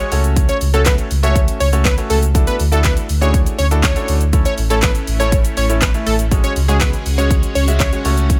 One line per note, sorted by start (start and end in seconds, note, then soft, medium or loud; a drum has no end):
0.00 0.12 G#3 medium
0.00 0.10 C#4 medium
0.00 0.10 F#4 medium
0.00 0.12 G#4 medium
0.00 0.10 C#5 medium
0.00 0.22 C#5 medium
0.00 closed hi-hat medium
0.00 shaker medium
0.12 0.48 C#2 loud
0.12 0.61 A3 medium
0.12 0.61 C#4 medium
0.12 0.61 F#4 medium
0.12 0.61 A4 medium
0.12 0.61 C#5 medium
0.12 open hi-hat medium
0.12 shaker medium
0.24 closed hi-hat medium
0.24 shaker medium
0.36 kick loud
0.36 closed hi-hat medium
0.36 shaker medium
0.49 0.57 C#5 medium
0.49 closed hi-hat medium
0.49 shaker medium
0.61 0.98 C#2 loud
0.61 open hi-hat medium
0.61 shaker medium
0.74 1.08 A3 medium
0.74 1.08 C#4 medium
0.74 1.08 F#4 medium
0.74 0.82 A4 medium
0.74 1.08 A4 medium
0.74 1.08 C#5 medium
0.74 closed hi-hat soft
0.74 shaker medium
0.86 0.95 B4 medium
0.86 kick loud
0.86 snare medium
0.86 clap loud
0.86 closed hi-hat medium
0.86 shaker medium
0.98 closed hi-hat medium
0.98 shaker medium
1.11 1.48 C#2 medium
1.11 open hi-hat medium
1.11 shaker medium
1.23 1.57 A3 medium
1.23 1.57 C#4 medium
1.23 1.57 F#4 medium
1.23 1.57 A4 medium
1.23 1.40 C#5 medium
1.23 1.58 E5 medium
1.23 closed hi-hat soft
1.23 shaker medium
1.36 kick loud
1.36 closed hi-hat medium
1.36 shaker medium
1.48 closed hi-hat medium
1.48 shaker medium
1.60 1.97 C#2 loud
1.60 1.69 C#5 medium
1.60 open hi-hat medium
1.60 shaker medium
1.72 1.90 A3 medium
1.72 1.90 C#4 medium
1.72 1.90 F#4 medium
1.72 1.90 A4 medium
1.72 1.90 C#5 medium
1.72 closed hi-hat medium
1.72 shaker medium
1.85 1.94 B4 loud
1.85 kick loud
1.85 snare loud
1.85 clap loud
1.85 closed hi-hat medium
1.85 shaker medium
1.97 2.23 A3 medium
1.97 2.23 C#4 medium
1.97 2.23 F#4 medium
1.97 2.23 A4 medium
1.97 2.23 C#5 medium
1.97 closed hi-hat medium
1.97 shaker medium
2.10 2.47 C#2 medium
2.10 2.19 A4 medium
2.10 open hi-hat medium
2.10 shaker medium
2.23 closed hi-hat medium
2.23 shaker medium
2.34 2.60 A3 medium
2.34 2.60 D4 medium
2.34 2.60 E4 medium
2.34 2.60 F#4 medium
2.34 2.61 A4 medium
2.34 kick loud
2.34 closed hi-hat medium
2.34 shaker medium
2.47 2.56 B4 medium
2.47 closed hi-hat medium
2.47 shaker medium
2.60 2.96 D2 medium
2.60 open hi-hat medium
2.60 shaker medium
2.72 3.06 A3 medium
2.72 3.06 D4 medium
2.72 3.06 E4 medium
2.72 3.06 F#4 medium
2.72 3.06 A4 medium
2.72 2.81 A4 medium
2.72 closed hi-hat soft
2.72 shaker medium
2.84 2.93 B4 medium
2.84 kick loud
2.84 snare loud
2.84 clap loud
2.84 closed hi-hat medium
2.84 shaker medium
2.97 closed hi-hat medium
2.97 shaker medium
3.09 3.46 D2 medium
3.09 open hi-hat medium
3.09 shaker medium
3.21 3.56 A3 medium
3.21 3.56 D4 medium
3.21 3.56 E4 medium
3.21 3.56 F#4 medium
3.21 3.56 G#4 medium
3.21 3.38 C#5 medium
3.21 closed hi-hat soft
3.21 shaker medium
3.34 kick loud
3.34 closed hi-hat medium
3.34 shaker medium
3.46 closed hi-hat medium
3.46 shaker medium
3.58 3.96 D2 loud
3.58 3.67 C#5 medium
3.58 open hi-hat medium
3.58 shaker medium
3.71 3.88 A3 medium
3.71 3.88 D4 medium
3.71 3.88 E4 medium
3.71 3.88 F#4 medium
3.71 3.88 A4 medium
3.71 closed hi-hat medium
3.71 shaker medium
3.83 4.18 C#5 medium
3.83 kick loud
3.83 snare loud
3.83 clap loud
3.83 closed hi-hat medium
3.83 shaker medium
3.96 4.22 A3 medium
3.96 4.22 D4 medium
3.96 4.22 E4 medium
3.96 4.22 F#4 medium
3.96 4.22 A4 medium
3.96 closed hi-hat medium
3.96 shaker medium
4.08 4.45 D2 medium
4.08 open hi-hat medium
4.08 shaker medium
4.21 closed hi-hat medium
4.21 shaker medium
4.33 4.59 A3 medium
4.33 6.30 A3 medium
4.33 4.59 C#4 medium
4.33 6.30 C#4 medium
4.33 4.59 E4 medium
4.33 6.30 E4 medium
4.33 4.59 A4 medium
4.33 4.59 C#5 medium
4.33 kick loud
4.33 closed hi-hat medium
4.33 shaker medium
4.45 4.54 C#5 medium
4.45 closed hi-hat medium
4.45 shaker medium
4.58 4.95 A1 medium
4.58 open hi-hat medium
4.58 shaker medium
4.70 5.05 A3 medium
4.70 5.05 C#4 medium
4.70 5.05 E4 medium
4.70 4.79 A4 medium
4.70 5.05 A4 medium
4.70 5.05 C#5 medium
4.70 closed hi-hat soft
4.70 shaker medium
4.82 4.91 B4 medium
4.82 kick loud
4.82 snare loud
4.82 clap loud
4.82 closed hi-hat medium
4.82 shaker medium
4.95 closed hi-hat medium
4.95 shaker medium
5.07 5.44 A1 medium
5.07 open hi-hat medium
5.07 shaker medium
5.20 5.54 A3 medium
5.20 5.54 C#4 medium
5.20 5.54 E4 medium
5.20 5.54 A4 medium
5.20 5.37 C#5 medium
5.20 5.54 C#5 loud
5.20 closed hi-hat soft
5.20 shaker medium
5.32 kick loud
5.32 closed hi-hat medium
5.32 shaker medium
5.45 closed hi-hat medium
5.45 shaker medium
5.57 5.94 A1 loud
5.57 5.66 C#5 medium
5.57 open hi-hat medium
5.57 shaker medium
5.69 5.86 A3 medium
5.69 5.87 C#4 medium
5.69 5.87 E4 medium
5.69 5.87 A4 medium
5.69 5.87 C#5 medium
5.69 closed hi-hat medium
5.69 shaker medium
5.82 5.90 B4 medium
5.82 kick loud
5.82 snare loud
5.82 clap loud
5.82 closed hi-hat medium
5.82 shaker medium
5.94 6.20 A3 medium
5.94 6.20 C#4 medium
5.94 6.20 E4 medium
5.94 6.20 A4 medium
5.94 6.20 C#5 medium
5.94 closed hi-hat medium
5.94 shaker medium
6.07 6.43 A1 medium
6.07 6.15 A4 medium
6.07 open hi-hat medium
6.07 shaker medium
6.19 closed hi-hat medium
6.19 shaker medium
6.31 8.40 C#3 medium
6.31 6.57 G#3 medium
6.31 6.57 C#4 medium
6.31 8.40 C#4 medium
6.31 8.40 F#4 medium
6.31 6.57 F#4 medium
6.31 8.03 G#4 medium
6.31 6.57 G#4 medium
6.31 6.57 C#5 medium
6.31 kick loud
6.31 closed hi-hat medium
6.31 shaker medium
6.44 6.52 C#5 medium
6.44 closed hi-hat medium
6.44 shaker medium
6.56 6.93 C#2 loud
6.56 open hi-hat medium
6.56 shaker medium
6.68 7.03 G#3 medium
6.68 7.03 C#4 medium
6.68 7.03 F#4 medium
6.68 6.77 G#4 medium
6.68 7.03 G#4 medium
6.68 7.03 C#5 medium
6.68 closed hi-hat soft
6.68 shaker medium
6.81 6.89 B4 medium
6.81 kick loud
6.81 snare loud
6.81 clap loud
6.81 closed hi-hat medium
6.81 shaker medium
6.93 closed hi-hat medium
6.93 shaker medium
7.06 7.43 C#2 medium
7.06 open hi-hat medium
7.06 shaker medium
7.18 7.52 G#3 medium
7.18 7.53 C#4 medium
7.18 7.53 F#4 medium
7.18 7.53 G#4 medium
7.18 7.35 C#5 medium
7.18 7.53 C#5 medium
7.18 closed hi-hat soft
7.18 shaker medium
7.31 kick loud
7.31 closed hi-hat medium
7.31 shaker medium
7.43 closed hi-hat medium
7.43 shaker medium
7.55 7.92 C#2 loud
7.55 7.64 C#5 medium
7.55 open hi-hat medium
7.55 shaker medium
7.67 7.85 G#3 medium
7.67 7.85 C#4 medium
7.67 7.85 F#4 medium
7.67 7.85 G#4 medium
7.67 7.85 E5 medium
7.67 closed hi-hat medium
7.67 shaker medium
7.80 8.15 C#5 medium
7.80 kick loud
7.80 snare loud
7.80 clap loud
7.80 closed hi-hat medium
7.80 shaker medium
7.92 8.05 G#3 medium
7.92 8.03 C#4 medium
7.92 8.04 F#4 medium
7.92 8.05 G#4 medium
7.92 8.04 C#5 medium
7.92 closed hi-hat medium
7.92 shaker medium
8.05 8.40 C#2 medium
8.05 8.40 A3 medium
8.05 8.40 C#4 medium
8.05 8.40 F#4 medium
8.05 8.40 A4 loud
8.05 8.40 A4 medium
8.05 8.40 C#5 medium
8.05 open hi-hat medium
8.05 shaker medium
8.17 closed hi-hat medium
8.17 shaker medium
8.30 kick loud
8.30 closed hi-hat medium
8.30 shaker medium